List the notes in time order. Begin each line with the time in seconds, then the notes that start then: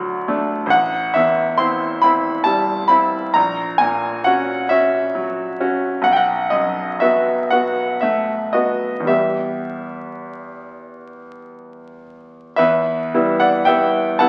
Already playing: D2 F#3 A5
0.28 A3 D4
0.66 A1
0.70 F#5
1.14 E2 E5
1.58 C4 E4 C6
2.02 C4 E4 B5
2.44 G3 A5
2.88 C4 E4 B5
3.34 A#1 A#5
3.78 A#2 G#5
4.24 C#4 F#4 F#5
4.69 C#4 F#4 E5
5.15 F#3
5.60 C#4 F#4
6.02 B1 F#5
6.13 F#5 G5
6.50 F#2 D#5
7.00 B3 F#4 E5
7.50 B3 F#4 F#5
8.01 A3 E5
8.53 B3 F#4 D#5
9.00 E2
9.05 G3 B3 G4 E5
12.56 E2 B4 E5
13.14 G3 B3 E4
13.40 D5 F#5
13.65 G3 B3 E4 E5 G5
14.19 G3 B3 E4 F#5 A5